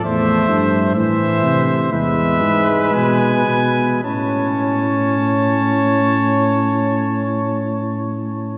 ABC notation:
X:1
M:4/4
L:1/8
Q:1/4=53
K:Ephr
V:1 name="Cornet"
e2 e2 e2 ^g2 | a8 |]
V:2 name="Trumpet"
c2 c2 B4 | ^c8 |]
V:3 name="Trombone" clef=bass
A,2 E,2 ^G,4 | ^C8 |]
V:4 name="Tuba" clef=bass
E,, G,, A,, C, E,, ^G,, B,, B,, | A,,8 |]